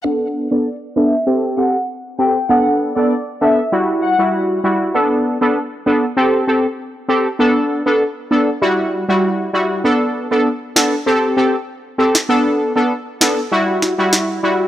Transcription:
<<
  \new Staff \with { instrumentName = "Violin section" } { \time 4/4 \key b \phrygian \tempo 4 = 98 fis''16 r8 d''16 r8 e''16 r8. fis''16 r8. g''16 r16 | fis''16 r8 d''16 r8 e''16 r8. fis''16 r4 r16 | r1 | r1 |
r1 | r1 | }
  \new Staff \with { instrumentName = "Synth stab" } { \time 4/4 \key b \phrygian <b d' a'>8. <b d' a'>16 r8 <b d' a'>16 r16 <c' g' a'>8 <c' g' a'>16 r8. <c' g' a'>16 r16 | <b d' a'>8. <b d' a'>16 r8 <b d' a'>16 r16 <g e' fis'>8. <g e' fis'>8. <g e' fis'>8 | <b d' a'>8. <b d' a'>16 r8 <b d' a'>16 r16 <c' g' a'>8 <c' g' a'>16 r8. <c' g' a'>16 r16 | <b d' a'>8. <b d' a'>16 r8 <b d' a'>16 r16 <g e' fis'>8. <g e' fis'>8. <g e' fis'>8 |
<b d' a'>8. <b d' a'>16 r8 <b d' a'>16 r16 <c' g' a'>8 <c' g' a'>16 r8. <c' g' a'>16 r16 | <b d' a'>8. <b d' a'>16 r8 <b d' a'>16 r16 <g e' fis'>8. <g e' fis'>8. <g e' fis'>8 | }
  \new DrumStaff \with { instrumentName = "Drums" } \drummode { \time 4/4 r4 r4 r4 r4 | r4 r4 r4 r4 | r4 r4 r4 r4 | r4 r4 r4 r4 |
r4 r8 sn8 r4 r8. sn16 | r4 r8 sn8 r8 sn8 sn4 | }
>>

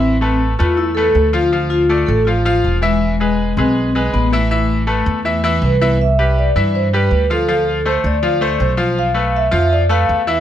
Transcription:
<<
  \new Staff \with { instrumentName = "Vibraphone" } { \time 4/4 \key a \minor \tempo 4 = 161 c'4 r8 f'8 e'8 a'4 f'8~ | f'8 f'4 a'8 f'4. gis8~ | gis4. c'4 r8 b8 a8~ | a2. b'8 b8 |
\key c \major e''4 d''4 c''8 b'4 a'8~ | a'4 c''8 d''4. c''4 | f''4 e''4 d''8 f''4 e''8 | }
  \new Staff \with { instrumentName = "Grand piano" } { \time 4/4 \key a \minor <e e' e''>8 <a a' b'>4 <a a' b'>4 <a a' b'>4 <f f' f''>8 | <f f' f''>4 <a a' d''>4 <f f' f''>8 <f f' f''>4 <e e' e''>8~ | <e e' e''>8 <gis gis' b'>4 <gis gis' b'>4 <gis gis' b'>4 <e e' e''>8 | <e e' e''>4 <a a' b'>4 <e e' e''>8 <e e' e''>4 <e e' e''>8 |
\key c \major r8 <g g' b'>4 <e e' e''>4 <g g' b'>4 <f f' f''>8 | <f f' f''>4 <a a' c''>4 <f f' f''>8 <a a' c''>4 <f f' f''>8~ | <f f' f''>8 <a a' b'>4 <f f' f''>4 <a a' b'>4 <e e' e''>8 | }
  \new Staff \with { instrumentName = "Upright bass" } { \clef bass \time 4/4 \key a \minor a,,4. e,4. d,4~ | d,4. a,,4. e,,4~ | e,,4. b,,4. a,,4~ | a,,4. e,4. c,4~ |
\key c \major c,4. g,4. d,4~ | d,4. d,4. b,,4~ | b,,4. f,4. e,4 | }
>>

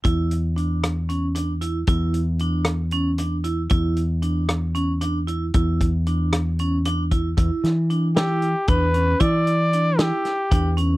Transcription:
<<
  \new Staff \with { instrumentName = "Trumpet" } { \time 7/8 \key e \dorian \tempo 4 = 115 r2. r8 | r2. r8 | r2. r8 | r2. r8 |
r4. g'4 b'4 | d''4. g'4. r8 | }
  \new Staff \with { instrumentName = "Vibraphone" } { \time 7/8 \key e \dorian e'4 d'4 cis'8 d'8 e'8 | e'4 d'4 cis'8 d'8 e'8 | e'4 d'4 cis'8 d'8 e'8 | e'4 d'4 cis'8 d'8 e'8 |
e'4 d'8 e'4 d'8 cis'8 | e'4 d'8 e'4 d'8 cis'8 | }
  \new Staff \with { instrumentName = "Fingered electric bass" } { \clef bass \time 7/8 \key e \dorian e,2.~ e,8 | e,2.~ e,8 | e,2.~ e,8 | e,2.~ e,8 |
e,16 r16 e2 e,4 | e2 r8 e,4 | }
  \new DrumStaff \with { instrumentName = "Drums" } \drummode { \time 7/8 <hh bd>8 hh8 hh8 <hh ss>8 hh8 hh8 hh8 | <hh bd>8 hh8 hh8 <hh ss>8 hh8 hh8 hh8 | <hh bd>8 hh8 hh8 <hh ss>8 hh8 hh8 hh8 | <hh bd>8 <hh bd>8 hh8 <hh ss>8 hh8 hh8 <hh bd>8 |
<hh bd>8 <hh sn>8 hh8 <hh sn>8 hh8 <hh bd>8 hh8 | <hh bd>8 hh8 hh8 <hh sn>8 <hh sn>8 <hh bd>8 hh8 | }
>>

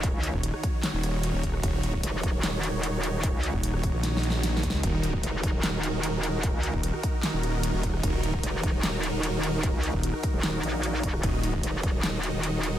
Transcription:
<<
  \new Staff \with { instrumentName = "Supersaw synth" } { \time 4/4 \key ees \phrygian \tempo 4 = 150 << { des''1~ | des''1~ | des''1 | bes'1~ |
bes'1~ | bes'1~ | bes'1 | ees''1 | } \\ { <ees ees' ges'>1~ | <ees ees' ges'>1~ | <ees ees' ges'>1~ | <ees ees' ges'>1~ |
<ees ees' ges'>1~ | <ees ees' ges'>1~ | <ees ees' ges'>1~ | <ees ees' ges'>1 | } >> }
  \new Staff \with { instrumentName = "Wobble bass" } { \clef bass \time 4/4 \key ees \phrygian r8. ees,,8 r4 ees,,4 ees,,8. | ees,,4 r2. | r8. ees,,8 ees,,8 bes,,2 des,16 | ees,,4 r2. |
r8. ees,,8 r4 ees,,4 ees,,8. | ees,,4 r2. | r8. ees,,8 r2 r8. | ees,,4 r2. | }
  \new Staff \with { instrumentName = "Wobble bass" } { \clef bass \time 4/4 \key ees \phrygian ees,,16 des,8 r2. r16 | r4 fes,,8. ees,,4 ees,,4~ ees,,16~ | ees,,16 des,8 r2. r16 | r4 fes,,8. ees,,4 ees,,4~ ees,,16~ |
ees,,16 des,8 r2. r16 | r4 fes,,8. ees,,4 ees,,4~ ees,,16~ | ees,,16 des,8 r4 ees,,8. bes,,4. | r4 fes,,8. ees,,4 ees,,4~ ees,,16 | }
  \new DrumStaff \with { instrumentName = "Drums" } \drummode { \time 4/4 <hh bd>8 hh16 bd16 hh16 ss16 <hh bd>8 <hc hh sn>8 hh8 hh8 <hh bd>16 ss16 | <hh bd>8 hh16 bd16 hh8 <hh bd>8 <hc hh sn>8 hh8 hh8 hh8 | <hh bd>8 hh16 bd16 hh16 ss16 <hh bd>8 \tuplet 3/2 { <hh sn>16 r16 sn16 hh16 sn16 r16 <hh sn>16 r16 sn16 <hh bd>16 sn16 r16 } | <hh bd>8 hh16 bd16 hh8 <hh bd>8 <hc hh sn>8 hh8 hh8 hh8 |
<hh bd>8 hh16 bd16 hh16 ss16 <hh bd>8 <hc hh sn>8 hh8 hh8 <hh bd>16 ss16 | <hh bd>8 hh16 bd16 hh8 <hh bd>8 <hc hh sn>8 hh8 hh8 hh8 | <hh bd>8 hh16 bd16 hh16 ss16 <hh bd>8 <hc hh sn>8 hh8 hh8 <hh bd>16 ss16 | <hh bd>8 hh16 bd16 hh8 <hh bd>8 <hc hh sn>8 hh8 hh8 hh8 | }
>>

